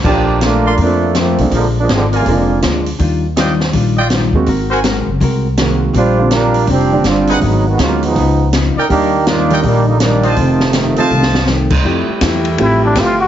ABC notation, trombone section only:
X:1
M:4/4
L:1/8
Q:"Swing" 1/4=163
K:Bb
V:1 name="Trombone section"
[F,B,DG]2 [A,B,DF]2 [F,A,B,D]2 [F,A,B,C]2 | [D,F,_A,B,] [F,A,B,D] [D,F,A,C] [D,F,A,B,]3 z2 | z8 | z8 |
[G,DFc]2 [G,DFB]2 [F,CDG]2 [G,CDF]2 | [_G,_A,_CE] [E,A,C_G] [G,B,_DF] [F,A,CE]3 z2 | [E,B,DG]2 [B,DEF]2 [E,G,B,D] [D,G,B,E] [E,G,B,D]2 | [C,E,F,A,]6 z2 |
[K:F] z8 |]